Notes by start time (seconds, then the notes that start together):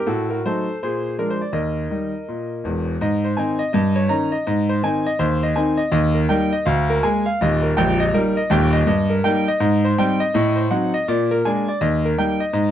0.07 A2 F#4 A4
0.30 F#4 A#4
0.45 F#3 A3 D#4 A4 C5
0.83 A#2 G#4 C5
1.18 F3 G#3 D4 A#4
1.30 C5
1.41 D5
1.53 D#2 A#4 D#5
1.90 D#3 G3 D#4
2.28 A#2
2.64 E1 E2
3.01 G#2 D#5
3.24 C5
3.37 D#3 C4 D#4 G#5
3.59 D#5
3.73 G2 D#5
3.96 C#5
4.09 D#3 C#4 D#4 A#5
4.32 D#5
4.47 G#2 D#5
4.69 C5
4.83 D#3 C4 D#4 G#5
5.06 D#5
5.19 D#2 C5
5.43 D#5
5.56 D#3 C4 D#4 G#5
5.77 D#5
5.92 D#2 D#5
6.14 A#4
6.29 G3 A#3 D#4 G5
6.53 D#5
6.66 D2 F5
6.90 A#4
7.03 G#3 A#3 G#5
7.26 F5
7.41 D#1 D#2 D#5
7.63 A#4
7.77 A#0 A#1 G5
8.00 D#5
8.14 G3 A#3 D#4 A#4
8.37 D#5
8.50 D#1 D#2 G5
8.73 D#5
8.87 G2 D#5
9.10 A#4
9.24 G3 A#3 D#4 G5
9.48 D#5
9.60 G#2 D#5
9.85 C5
9.98 G3 C4 D#4 G5
10.20 D#5
10.34 A2 D#5
10.56 C5
10.71 F#3 C4 D#4 F#5
10.94 D#5
11.08 A#2 D5
11.31 A#4
11.45 G#3 A#3 D4 G#5
11.68 D5
11.81 D#2 D#5
12.05 A#4
12.18 G3 A#3 D#4 G5
12.40 D#5
12.53 G#2 D#5